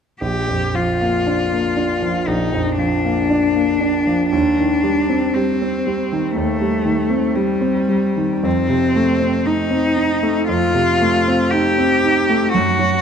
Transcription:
0.21 grand piano A#1, cello G4
0.48 grand piano F2
0.74 grand piano F3, cello F4
1.01 grand piano A#3
1.27 grand piano D4
1.52 grand piano A#3
1.77 grand piano D4
2.02 grand piano F3
2.28 grand piano A#1, cello D#4
2.52 grand piano F2
2.78 grand piano F3, cello D4
3.05 grand piano A#3
3.30 grand piano D4
3.55 grand piano A#3
3.80 grand piano D4
4.07 grand piano F3
4.30 grand piano D#2, cello D4
4.58 grand piano D#3
4.83 grand piano G3
5.09 grand piano C4
5.34 grand piano G3, cello C4
5.62 grand piano C4
5.87 grand piano G3
6.13 grand piano D#3
6.36 grand piano D#2, cello A3
6.61 grand piano G3
6.85 grand piano D#3
7.10 grand piano C4
7.35 cello G3, grand piano G3
7.61 grand piano C4
7.89 grand piano G3
8.17 grand piano D#3
8.43 grand piano F2, cello C4
8.69 grand piano C3
8.96 grand piano A3
9.20 grand piano C4
9.45 grand piano D#4, cello D#4
9.70 grand piano C4
9.96 grand piano D#4
10.22 grand piano A3
10.48 grand piano F2, cello F4
10.74 grand piano C3
11.01 grand piano A3
11.28 grand piano C4
11.51 grand piano D#4, cello G4
11.78 grand piano C4
12.04 grand piano D#4
12.29 grand piano A3
12.52 grand piano F#2, cello F#4
12.79 grand piano F#3

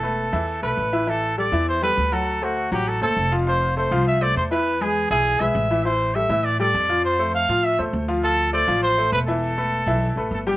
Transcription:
Already playing: upright bass E1, trumpet A4
0.03 upright piano A3 A4 B4
0.33 upright bass E2, upright piano E3 E4 E5
0.63 upright bass B1, upright piano A3 A4 B4, trumpet B4
0.77 upright bass A1
0.93 upright piano E3 E4 E5
1.07 upright piano E3 E4 E5, trumpet A4
1.38 upright piano G3 G4 A4, trumpet D5
1.52 upright bass E2, upright piano E3 E4 E5
1.69 trumpet C5
1.82 upright piano G3 G4 A4, trumpet B4
1.97 upright bass D2
2.12 upright piano F#3 F#4 F#5, trumpet A4
2.42 upright piano A3 A4 C5, trumpet F#4
2.72 upright bass A1, upright piano F#3 F#4 F#5, trumpet G4
2.88 trumpet A4
3.01 upright bass F#1, upright piano A3 A4 C5, trumpet A4
3.17 upright bass F1
3.32 upright piano F3 F4 F5
3.47 upright piano F3 F4 F5, trumpet C5
3.77 upright piano A3 A4 C5, trumpet C5
3.91 upright bass C2, upright piano F3 F4 F5
4.07 trumpet E5
4.21 upright piano A3 A4 C5, trumpet D5
4.36 upright bass E2, trumpet C5
4.51 upright piano E3 E4 E5, trumpet B4
4.81 upright piano G#3 G#4 B4, trumpet G#4
5.10 upright bass B1, upright piano E3 E4 E5, trumpet G#4
5.40 upright bass B1, upright piano G#3 G#4 B4, trumpet E5
5.55 upright bass A1
5.71 upright piano E3 E4 E5
5.85 upright piano E3 E4 E5, trumpet C5
6.15 upright piano G3 G4 A4, trumpet E5
6.29 upright bass A2, upright piano E3 E4 E5
6.45 trumpet D5
6.60 upright piano G3 G4 A4, trumpet D5
6.74 upright bass F2
6.89 upright piano F3 F4 F5
7.04 trumpet C5
7.19 upright piano A3 A4 C5
7.35 trumpet F5
7.49 upright bass A2, upright piano F3 F4 F5
7.64 trumpet E5
7.79 upright bass E2, upright piano A3 A4 C5
7.93 upright bass D2
8.08 upright piano F3 F4 F5
8.23 upright piano F3 F4 F5, trumpet A4
8.53 upright piano A3 A4 C5, trumpet D5
8.68 upright bass A1, upright piano F3 F4 F5
8.83 trumpet C5
8.98 upright piano A3 A4 C5
9.12 upright bass E1, trumpet B4
9.27 upright piano E3 E4 E5, trumpet A4
9.58 upright piano A3 A4 B4
9.86 upright bass B1, upright piano E3 E4 E5
10.16 upright bass A1, upright piano A3 A4 B4
10.31 upright bass G1, trumpet A4
10.47 upright piano G3 G4 G5, trumpet G4

